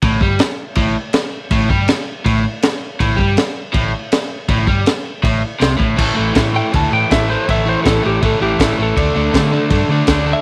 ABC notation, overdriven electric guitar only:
X:1
M:4/4
L:1/8
Q:1/4=161
K:D
V:1 name="Overdriven electric guitar" clef=bass
A,, G, z2 A,, z3 | A,, G, z2 A,, z3 | A,, G, z2 A,, z3 | A,, G, z2 A,, z =C, A,, |
[A,,E,A,] [A,,E,A,] [A,,E,A,] [A,,E,A,] [A,,E,A,] [A,,E,A,] [A,,E,A,] [A,,E,A,] | [A,,E,A,] [A,,E,A,] [A,,E,A,] [A,,E,A,] [A,,E,A,] [A,,E,A,] [A,,E,A,] [A,,E,A,] | [D,A,D] [D,A,D] [D,A,D] [D,A,D] [D,A,D] [D,A,D] [D,A,D] [D,A,D] |]